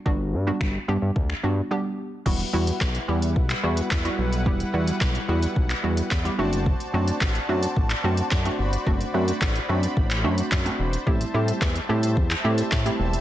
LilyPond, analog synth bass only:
\new Staff \with { instrumentName = "Analog synth bass" } { \clef bass \time 4/4 \key e \minor \tempo 4 = 109 g,,8 g,8 g,,8 g,16 g,16 d,8 g,8 r4 | e,,8 e,8 b,,8 e,8 b,,8 e,8 e,8 b,,8 | e,,8 e,8 b,,8 e,8 b,,8 e,8 e,8 fis,,8~ | fis,,8 fis,8 a,,8 fis,8 a,,8 fis,8 fis,8 g,,8 |
fis,,8 fis,8 a,,8 fis,8 a,,8 fis,8 fis,8 e,,8 | a,,8 a,8 e,8 a,8 e,8 a,8 a,8 e,,8 | }